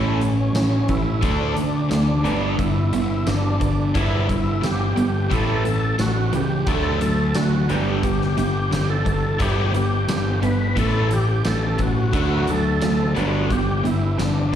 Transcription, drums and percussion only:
0.21 closed hi-hat medium
0.55 snare loud
0.55 closed hi-hat medium
0.55 tambourine loud
0.88 kick medium
0.88 closed hi-hat medium
1.23 kick loud
1.23 closed hi-hat medium
1.57 closed hi-hat medium
1.91 snare loud
1.91 closed hi-hat medium
1.91 tambourine loud
2.25 closed hi-hat medium
2.59 kick medium
2.59 closed hi-hat medium
2.93 closed hi-hat medium
3.27 snare medium
3.27 closed hi-hat medium
3.27 tambourine loud
3.61 kick medium
3.61 closed hi-hat medium
3.95 kick loud
3.95 closed hi-hat medium
4.29 kick medium
4.29 closed hi-hat medium
4.63 snare loud
4.63 closed hi-hat medium
4.63 tambourine loud
4.97 closed hi-hat medium
5.31 kick medium
5.31 closed hi-hat medium
5.65 closed hi-hat medium
5.99 snare loud
5.99 closed hi-hat medium
5.99 tambourine loud
6.33 closed hi-hat medium
6.67 kick loud
6.67 closed hi-hat medium
7.01 closed hi-hat medium
7.35 snare loud
7.35 closed hi-hat medium
7.35 tambourine loud
7.69 closed hi-hat medium
8.03 kick medium
8.03 closed hi-hat medium
8.21 snare soft
8.38 closed hi-hat medium
8.72 snare medium
8.72 closed hi-hat medium
8.72 tambourine loud
9.06 kick medium
9.06 closed hi-hat medium
9.40 kick loud
9.40 closed hi-hat medium
9.74 closed hi-hat medium
10.09 snare loud
10.09 closed hi-hat medium
10.09 tambourine loud
10.43 closed hi-hat medium
10.77 kick medium
10.77 closed hi-hat medium
11.11 closed hi-hat medium
11.45 snare medium
11.45 closed hi-hat medium
11.45 tambourine loud
11.78 kick medium
11.78 closed hi-hat medium
12.13 kick loud
12.13 closed hi-hat medium
12.47 closed hi-hat medium
12.81 snare loud
12.81 closed hi-hat medium
12.81 tambourine loud
13.16 closed hi-hat medium
13.50 kick medium
13.50 closed hi-hat medium
13.85 closed hi-hat medium
14.19 snare loud
14.19 closed hi-hat medium
14.19 tambourine loud

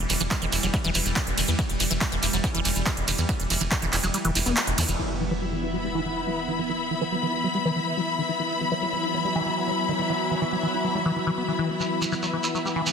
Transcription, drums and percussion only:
0.09 open hi-hat loud
0.09 ride medium
0.09 shekere medium
0.20 closed hi-hat medium
0.20 shekere soft
0.31 kick loud
0.31 clap loud
0.31 closed hi-hat medium
0.31 ride medium
0.31 shekere soft
0.42 closed hi-hat medium
0.52 open hi-hat loud
0.52 ride medium
0.52 shekere loud
0.63 closed hi-hat medium
0.63 shekere soft
0.74 kick loud
0.74 closed hi-hat medium
0.74 ride medium
0.74 shekere soft
0.84 closed hi-hat medium
0.94 open hi-hat loud
0.94 ride medium
0.94 shekere loud
1.05 closed hi-hat medium
1.05 shekere soft
1.16 kick loud
1.16 clap loud
1.16 closed hi-hat medium
1.16 ride medium
1.16 shekere soft
1.27 closed hi-hat medium
1.38 open hi-hat loud
1.38 ride medium
1.38 shekere medium
1.48 closed hi-hat medium
1.48 shekere soft
1.59 kick loud
1.59 closed hi-hat medium
1.59 ride medium
1.59 shekere soft
1.69 closed hi-hat medium
1.80 open hi-hat loud
1.80 ride medium
1.80 shekere medium
1.91 closed hi-hat medium
1.91 shekere medium
2.01 kick loud
2.01 clap loud
2.01 closed hi-hat medium
2.01 ride medium
2.01 shekere soft
2.12 closed hi-hat medium
2.23 open hi-hat loud
2.23 ride medium
2.23 shekere medium
2.33 closed hi-hat medium
2.33 shekere soft
2.44 kick loud
2.44 closed hi-hat medium
2.44 ride medium
2.44 shekere soft
2.55 closed hi-hat medium
2.65 open hi-hat loud
2.65 ride medium
2.65 shekere medium
2.75 closed hi-hat medium
2.75 shekere soft
2.86 kick loud
2.86 clap loud
2.86 closed hi-hat medium
2.86 ride medium
2.86 shekere soft
2.97 closed hi-hat medium
3.08 open hi-hat loud
3.08 ride medium
3.08 shekere loud
3.18 closed hi-hat medium
3.18 shekere soft
3.29 kick loud
3.29 closed hi-hat medium
3.29 ride medium
3.29 shekere soft
3.40 closed hi-hat medium
3.50 open hi-hat loud
3.50 ride medium
3.50 shekere medium
3.61 closed hi-hat medium
3.61 shekere soft
3.71 kick loud
3.71 clap loud
3.71 closed hi-hat medium
3.71 ride medium
3.71 shekere soft
3.82 closed hi-hat medium
3.93 clap medium
3.93 open hi-hat loud
3.93 ride medium
3.93 shekere medium
4.03 closed hi-hat medium
4.03 shekere soft
4.14 closed hi-hat medium
4.14 ride medium
4.14 shekere soft
4.25 closed hi-hat medium
4.35 open hi-hat loud
4.35 ride medium
4.35 shekere loud
4.46 closed hi-hat medium
4.46 shekere medium
4.57 clap loud
4.57 closed hi-hat medium
4.57 ride medium
4.57 shekere soft
4.67 closed hi-hat medium
4.78 open hi-hat loud
4.78 ride medium
4.78 shekere loud
4.89 closed hi-hat medium
4.89 shekere soft
11.80 shekere soft
12.02 shekere medium
12.12 shekere soft
12.22 shekere soft
12.44 shekere medium
12.55 shekere soft
12.66 shekere soft
12.87 shekere medium

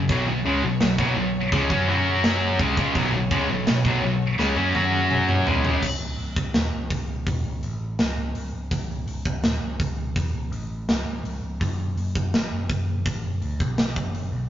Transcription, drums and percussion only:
0.09 kick loud
0.09 china medium
0.81 snare loud
0.81 china medium
0.98 kick loud
1.52 kick loud
1.52 china medium
1.70 kick loud
2.24 snare loud
2.24 china medium
2.59 kick loud
2.77 kick loud
2.95 kick loud
2.95 china medium
3.31 kick loud
3.67 snare loud
3.67 china medium
3.85 kick loud
4.39 snare medium
4.75 high tom medium
5.11 mid tom medium
5.29 mid tom medium
5.47 floor tom loud
5.65 floor tom medium
5.83 kick medium
5.83 crash loud
6.19 open hi-hat soft
6.36 kick loud
6.54 snare loud
6.54 open hi-hat medium
6.90 kick loud
6.90 open hi-hat medium
7.27 kick loud
7.27 open hi-hat medium
7.63 open hi-hat medium
7.99 snare loud
7.99 open hi-hat medium
8.35 open hi-hat medium
8.71 kick medium
8.71 open hi-hat medium
9.08 open hi-hat medium
9.25 kick loud
9.44 snare loud
9.44 open hi-hat medium
9.80 kick loud
9.80 open hi-hat medium
10.16 kick loud
10.16 open hi-hat medium
10.53 open hi-hat medium
10.89 snare loud
10.89 open hi-hat medium
11.25 open hi-hat medium
11.61 kick medium
11.61 open hi-hat medium
11.98 open hi-hat medium
12.15 kick loud
12.34 snare loud
12.34 open hi-hat medium
12.70 kick loud
12.70 open hi-hat medium
13.06 kick loud
13.06 open hi-hat medium
13.42 open hi-hat medium
13.60 kick loud
13.78 snare loud
13.78 open hi-hat medium
13.96 kick loud
14.15 open hi-hat medium

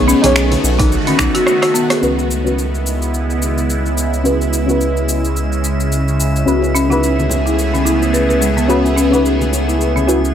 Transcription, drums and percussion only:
0.09 cabasa medium
0.24 open hi-hat medium
0.24 high conga medium
0.24 low conga medium
0.24 cabasa soft
0.36 finger snap medium
0.36 cabasa soft
0.52 open hi-hat soft
0.52 high bongo soft
0.52 high conga medium
0.52 cabasa soft
0.64 high bongo medium
0.64 cabasa medium
0.79 kick loud
0.79 open hi-hat medium
0.79 low conga medium
0.79 cabasa soft
0.92 cabasa soft
1.07 open hi-hat soft
1.07 high conga medium
1.07 cabasa soft
1.19 finger snap medium
1.19 kick medium
1.19 cabasa medium
1.35 open hi-hat medium
1.35 high conga soft
1.35 cabasa soft
1.47 cross-stick medium
1.47 cabasa soft
1.63 cross-stick medium
1.63 open hi-hat soft
1.63 cabasa soft
1.75 cabasa medium
1.90 cross-stick medium
1.90 open hi-hat medium
1.90 cabasa soft
2.03 cabasa soft
2.19 cabasa soft
2.31 cabasa medium
2.47 cabasa soft
2.59 cabasa soft
2.75 cabasa soft
2.86 cabasa medium
3.02 cabasa soft
3.14 cabasa soft
3.30 cabasa soft
3.42 cabasa medium
3.58 cabasa soft
3.70 cabasa soft
3.86 cabasa soft
3.98 cabasa medium
4.14 cabasa soft
4.25 cabasa soft
4.41 cabasa soft
4.53 cabasa medium
4.69 cabasa soft
4.81 cabasa soft
4.97 cabasa soft
5.09 cabasa medium
5.25 cabasa soft
5.37 cabasa soft
5.52 cabasa soft
5.64 cabasa medium
5.80 cabasa soft
5.92 cabasa soft
6.08 cabasa soft
6.20 cabasa medium
6.36 cabasa soft
6.48 cabasa soft
6.62 high bongo soft
6.62 cabasa soft
6.76 cabasa medium
6.91 high conga medium
6.91 cabasa soft
7.03 cabasa soft
7.18 high bongo soft
7.18 high conga medium
7.18 cabasa soft
7.30 high bongo soft
7.30 low conga medium
7.30 cabasa medium
7.47 cabasa soft
7.59 cabasa soft
7.75 high conga medium
7.75 cabasa soft
7.87 cabasa medium
8.02 high bongo soft
8.02 cabasa soft
8.14 cabasa soft
8.30 high conga soft
8.30 cabasa soft
8.42 cabasa medium
8.57 high conga medium
8.57 cabasa soft
8.70 cabasa soft
8.86 high bongo soft
8.86 cabasa soft
8.98 cabasa medium
9.13 high conga medium
9.13 cabasa soft
9.26 cabasa soft
9.41 high conga medium
9.41 cabasa soft
9.53 high bongo soft
9.53 cabasa medium
9.69 cabasa soft
9.81 cabasa soft
9.96 high conga medium
9.96 cabasa soft
10.09 cabasa medium
10.25 cabasa soft

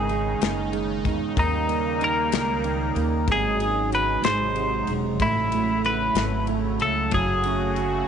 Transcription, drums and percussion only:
0.09 ride soft
0.42 snare loud
0.42 ride medium
0.73 ride soft
1.05 kick medium
1.05 ride soft
1.37 kick loud
1.37 ride medium
1.69 ride soft
2.01 ride soft
2.32 snare medium
2.32 ride medium
2.64 ride soft
2.96 ride soft
3.28 kick loud
3.28 ride medium
3.60 ride soft
3.92 ride soft
4.24 snare loud
4.24 ride medium
4.56 ride soft
4.87 ride soft
5.20 kick loud
5.20 ride medium
5.52 ride medium
5.85 ride soft
6.15 snare medium
6.15 ride medium
6.47 ride soft
6.80 ride soft
7.11 kick loud
7.11 ride medium
7.43 ride soft
7.76 ride soft

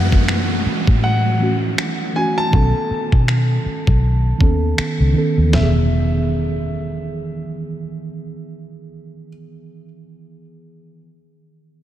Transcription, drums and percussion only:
0.12 kick medium
0.28 finger snap loud
0.87 kick medium
1.78 finger snap loud
2.53 kick medium
3.12 kick medium
3.28 finger snap loud
3.87 kick medium
4.41 kick medium
4.78 finger snap loud
5.53 snare medium
5.53 floor tom medium

